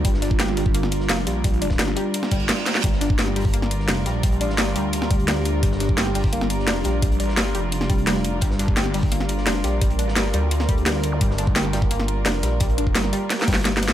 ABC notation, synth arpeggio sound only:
X:1
M:4/4
L:1/16
Q:1/4=172
K:Gm
V:1 name="Synth arpeggio sound" clef=bass
G, z D z G2 G,2 B,2 z2 B, z G, z | G, z D z G, z G,2 z2 G,2 G,2 z2 | G, z D z G2 G,2 B,2 z2 D2 G, z | G, z D z G, z G,2 z2 G,2 G, z3 |
G, z D z G2 G,2 B,2 z2 D2 G, z | G, z D z G, z G,2 z2 G, z G,2 z2 | G, z D z G2 G,2 B,2 z2 D2 G, z | G, z D z G, z G,2 z2 G,2 G, z3 |
G, z D z G2 G,2 B,2 z2 D2 G, z | G, z D z G, z G,2 z2 G,2 G,2 z2 |]